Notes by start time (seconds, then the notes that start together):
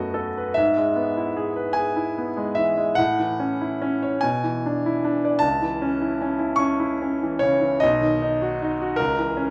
Already playing: F#2 A3 B3 F#4 D#5
0.14 A4
0.37 B4
0.54 G#2 E5
0.77 G#3
0.96 B3
1.17 E4
1.37 G#4
1.56 B4
1.73 G#4 G#5
1.96 E4
2.18 B3
2.37 G#3
2.55 E3 E5
2.77 G#3
2.95 A2 F#5
3.20 E3
3.40 C#4
3.61 E4
3.82 C#4
4.03 C#5
4.21 B2 G#5
4.44 E3
4.66 D4
4.86 E4
5.04 D4
5.25 D5
5.39 C#2 A5
5.62 E3
5.82 C#4
6.02 E4
6.22 C#4
6.39 E4
6.56 C#4 C#6
6.80 E4
7.01 C#4
7.23 E3
7.39 C#3 C#5
7.61 E3
7.80 B1 D#5
8.01 D#3
8.22 D#4
8.42 F#4
8.62 D#4
8.82 F#4
8.96 C#2 A#4
9.19 E3
9.37 C#4